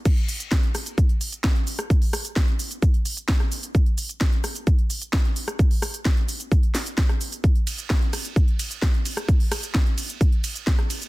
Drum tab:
CC |x---------------|----------------|----------------|----------------|
RD |----------------|----------------|----------------|----------------|
HH |xxoxxxoxxxoxxxox|xooxxxoxxxoxxxox|xxoxxxoxxxoxxxox|xooxxxoxxxoxxxox|
SH |x-xxx-xxx-xxx-xx|x-xxx-xxx-xxx-xx|x-xxx-xxx-xxx-xx|x-xxx-xxx-xxx-xx|
SD |----o-r-----o--r|--r-o-------or--|----o-r-----o--r|--r-o-----o-or--|
BD |o---o---o---o---|o---o---o---o---|o---o---o---o---|o---o---o---o---|

CC |----------------|----------------|
RD |--x---x---x---x-|--x---x---x---x-|
HH |xxoxxxoxxxoxxxox|xooxxxoxxxoxxxox|
SH |x-xxx-xxx-xxx-xx|x-xxx-xxx-xxx-xx|
SD |----o-r-----o--r|--r-o-------or--|
BD |o---o---o---o---|o---o---o---o---|